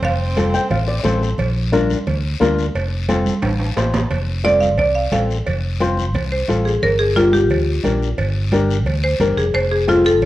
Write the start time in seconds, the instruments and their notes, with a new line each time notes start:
0.02 fingered electric bass F1, tenor saxophone C4, marimba F5, cowbell, low conga, long guiro
0.37 nylon-string guitar C4 F4 A4, cowbell, high conga, short guiro
0.54 nylon-string guitar G5, short guiro
0.71 fingered electric bass A1, nylon-string guitar F5, cowbell, low conga, long guiro
0.88 nylon-string guitar D5
1.04 fingered electric bass A1, nylon-string guitar C4 F4 A4 C5, cowbell, high conga, low conga, short guiro
1.22 nylon-string guitar A4, short guiro
1.38 fingered electric bass A#1, cowbell, low conga, long guiro
1.72 nylon-string guitar D4 F4 A#4, cowbell, high conga, short guiro
1.90 high conga, short guiro
2.07 fingered electric bass D2, cowbell, low conga, long guiro
2.40 fingered electric bass D2, nylon-string guitar D4 F4 A#4, cowbell, high conga, low conga, low timbale, short guiro
2.59 short guiro
2.75 fingered electric bass F1, cowbell, long guiro
3.09 nylon-string guitar C4 F4 A4, cowbell, high conga, short guiro
3.26 high conga, short guiro
3.42 fingered electric bass A1, cowbell, high conga, high timbale, long guiro
3.60 high timbale
3.76 fingered electric bass A1, nylon-string guitar C4 F4 C5, cowbell, low timbale, short guiro
3.94 low conga, low timbale, short guiro
4.11 fingered electric bass F1, cowbell, low conga, long guiro
4.44 nylon-string guitar C4 F4 A4, marimba D5, cowbell, high conga, short guiro
4.61 marimba F5, high conga, short guiro
4.78 fingered electric bass C2, marimba D5, cowbell, low conga, long guiro
4.95 marimba F5
5.12 fingered electric bass A1, nylon-string guitar C4 F4 A4, marimba F5, cowbell, high conga, low conga, short guiro
5.30 short guiro
5.46 fingered electric bass F1, cowbell, low conga, long guiro
5.80 nylon-string guitar C4 F4 C5, cowbell, high conga, short guiro
5.97 high conga, short guiro
6.14 fingered electric bass C2, cowbell, low conga, long guiro
6.32 marimba C5
6.48 fingered electric bass A1, nylon-string guitar C4 F4 A4, cowbell, high conga, short guiro
6.65 marimba G#4, short guiro
6.82 fingered electric bass G1, marimba A#4, cowbell, low conga, long guiro
6.99 marimba G#4
7.16 nylon-string guitar D4 G4 A#4, marimba F4, cowbell, high conga, short guiro
7.33 marimba G4, high conga, short guiro
7.50 fingered electric bass D2, cowbell, low conga, long guiro
7.84 fingered electric bass A#1, nylon-string guitar D4 G4 A#4, cowbell, high conga, low conga, short guiro
8.03 short guiro
8.18 fingered electric bass G1, cowbell, low conga, long guiro
8.52 nylon-string guitar D4 G4 A#4, cowbell, high conga, short guiro
8.70 short guiro
8.86 fingered electric bass D2, cowbell, low conga, long guiro
9.04 marimba C5
9.20 fingered electric bass G1, nylon-string guitar D4 G4 A#4, cowbell, high conga, low conga, short guiro
9.37 fingered electric bass F1, marimba G#4, short guiro
9.54 fingered electric bass F1, marimba C5, cowbell, long guiro
9.72 marimba G#4
9.87 nylon-string guitar C4 F4 A4, marimba F4, cowbell, high conga, short guiro
10.05 marimba A4, high conga, short guiro
10.22 fingered electric bass C2, cowbell, low conga, long guiro